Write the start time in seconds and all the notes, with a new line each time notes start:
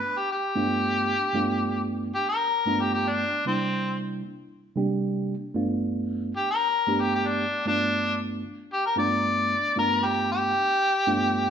Already playing: B4
0.18 G4
0.32 G4
0.55 G2 A3 B3 D4 F4
1.33 G2 A3 B3 D4 F4
2.15 G4
2.29 A#4
2.66 G2 A3 B3 D4 F4
2.82 G4
2.94 G4
3.08 D4
3.45 C3 G3 A#3 C4 D4 E4
4.76 C3 G3 A#3 D4 G4
5.54 G2 A3 B3 D4 F4
6.36 G4
6.51 A#4
6.87 G2 A3 B3 D4 G4
7.02 G4
7.15 G4
7.28 D4
7.66 G2 A3 B3 D4 F4
8.73 G4
8.86 A#4
8.96 G2 A3 B3 D4 F4 D5
9.76 G2 A3 B3 D4 F4 A#4
10.05 G4
10.32 G4
11.06 G2 A3 B3 D4 F4